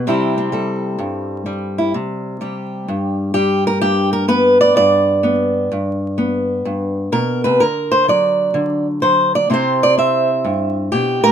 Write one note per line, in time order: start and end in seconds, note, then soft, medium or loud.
0.07 1.00 C3 medium
0.07 0.52 G3 medium
0.07 0.37 C4 medium
0.07 1.77 E4 medium
0.07 0.53 G4 medium
0.38 1.92 C4 medium
0.52 1.45 G3 medium
0.52 1.92 A4 medium
0.99 1.93 G2 medium
1.46 2.40 G3 medium
1.78 1.92 E4 medium
1.94 2.88 C3 medium
2.41 3.34 G3 medium
2.41 3.34 G4 soft
2.88 3.81 G2 medium
3.34 4.28 G3 medium
3.34 3.65 G4 medium
3.67 3.81 A#4 loud
3.81 4.75 G2 medium
3.81 4.12 G4 loud
4.13 4.28 A#4 medium
4.28 5.22 B3 medium
4.28 4.60 B4 medium
4.61 4.76 D5 loud
4.76 5.70 G2 medium
4.76 7.12 D5 medium
5.23 5.69 B3 medium
5.72 6.64 G2 medium
6.18 7.58 B3 medium
6.65 7.12 G2 medium
7.12 7.43 B2 medium
7.12 7.43 A#4 medium
7.44 7.61 C3 medium
7.44 7.60 B4 medium
7.60 8.53 D3 medium
7.60 7.91 A#4 medium
7.91 8.07 C5 medium
8.08 9.02 F#3 medium
8.08 8.86 D5 medium
8.54 9.47 D3 medium
9.02 9.48 F#3 medium
9.02 9.33 C5 medium
9.35 9.50 D5 medium
9.50 10.44 C3 medium
9.50 9.96 C4 soft
9.50 11.32 E4 soft
9.50 9.83 G4 soft
9.50 10.30 C5 medium
9.83 9.98 D5 medium
9.97 11.32 C4 medium
9.97 10.76 E5 medium
10.44 10.91 G2 medium
10.92 11.23 B2 medium
10.92 11.32 G4 medium
11.24 11.32 A2 medium
11.24 11.32 A#4 loud